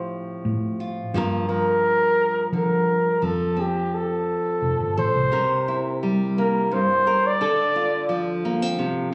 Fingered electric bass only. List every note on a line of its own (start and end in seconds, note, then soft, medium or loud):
0.00 0.20 A2 medium
0.45 1.02 A2 medium
1.14 2.28 G2 medium
2.52 3.09 F3 medium
3.23 4.37 F2 medium
4.62 4.78 F1 medium
4.80 4.95 G1 medium
4.98 5.13 A1 medium
5.15 5.31 C2 medium